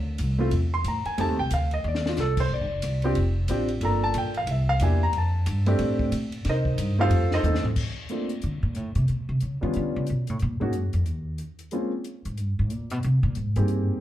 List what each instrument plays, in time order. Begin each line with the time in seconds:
Already playing: upright bass D2
0.18 upright bass C2, hi-hat pedal, ride
0.38 grand piano A3 C4 E4 F4
0.51 upright bass E2, ride
0.74 grand piano C6
0.84 upright bass A2, grand piano A#5, hi-hat pedal, ride
1.05 grand piano G#5, muted upright bass stroke, ride
1.18 upright bass F2, grand piano A3 C4 D#4 G4 A5, ride
1.28 upright bass D#2
1.39 upright bass C2, grand piano G5
1.50 upright bass D2, grand piano F5, hi-hat pedal, ride
1.71 grand piano D#5, ride
1.84 upright bass D#2, grand piano D5
1.95 snare
2.06 grand piano F4, snare
2.17 upright bass C2, grand piano A4, snare, hi-hat pedal
2.37 grand piano C5, kick, crash
2.50 upright bass A#1, grand piano D5
2.60 upright bass G1
2.72 upright bass F1
2.82 upright bass C2, hi-hat pedal, ride
3.02 grand piano C4 D4 F4 G4, ride
3.15 upright bass F1, ride
3.48 upright bass A1, grand piano C4 D4 F4 G4, hi-hat pedal, ride
3.68 ride
3.81 upright bass G1, grand piano A#3 D4 F4 A4, ride
3.85 grand piano A#5
4.04 grand piano A5
4.14 upright bass A#1, grand piano G5, hi-hat pedal, ride
4.34 grand piano F5, ride
4.47 upright bass C2, ride
4.51 grand piano E5
4.69 grand piano F5
4.80 upright bass E2, grand piano A#3 D4 E4 G4 G#5, hi-hat pedal, ride
5.03 grand piano A#5
5.13 upright bass F2, ride
5.18 grand piano A5
5.46 upright bass G2, hi-hat pedal, ride
5.66 grand piano A3 C4 D4 G4, ride
5.79 upright bass A2, ride
5.99 kick
6.12 upright bass A#2, hi-hat pedal, ride
6.32 ride
6.45 upright bass C3, snare, ride
6.49 grand piano D#4 A#4 C5 D#5
6.65 kick
6.78 upright bass G2, hi-hat pedal, ride
6.99 grand piano A3 C4 D#4 F4 G4 A4 C5 F5
7.09 upright bass F2, ride
7.31 grand piano D#4 A4 C5 D#5, snare
7.43 upright bass D#2, grand piano A3 C4 D#4 A4, hi-hat pedal, high tom
7.55 snare
7.63 muted upright bass stroke, floor tom
7.76 kick, crash
8.09 grand piano A3 A#3 C4 D4 F4, closed hi-hat
8.29 closed hi-hat
8.42 upright bass D3, closed hi-hat
8.63 upright bass A#2
8.75 upright bass A2, closed hi-hat
8.95 upright bass C3, closed hi-hat
9.08 upright bass B2, closed hi-hat
9.29 upright bass C3
9.40 upright bass C#3, closed hi-hat
9.61 upright bass D#3, grand piano G3 B3 C#4 D4 F4
9.74 upright bass D3, closed hi-hat
9.96 upright bass C#3
10.07 upright bass B2, closed hi-hat
10.27 upright bass A2, closed hi-hat
10.39 upright bass A#2, closed hi-hat
10.60 upright bass G#2, grand piano G#3 A#3 C#4 D#4 F#4
10.73 upright bass F#2, closed hi-hat
10.93 upright bass F2, closed hi-hat
11.06 upright bass D#2, closed hi-hat
11.38 closed hi-hat
11.59 closed hi-hat
11.71 grand piano G#3 A#3 C4 C#4 F4, closed hi-hat
12.04 closed hi-hat
12.25 upright bass G#2, closed hi-hat
12.37 upright bass G2, closed hi-hat
12.59 upright bass G#2
12.70 upright bass A#2, closed hi-hat
12.90 upright bass B2, closed hi-hat
13.03 upright bass C3, closed hi-hat
13.23 upright bass A#2
13.35 upright bass G#2, closed hi-hat
13.56 upright bass G2, grand piano A#3 C4 D#4 G4 G#4, closed hi-hat
13.68 closed hi-hat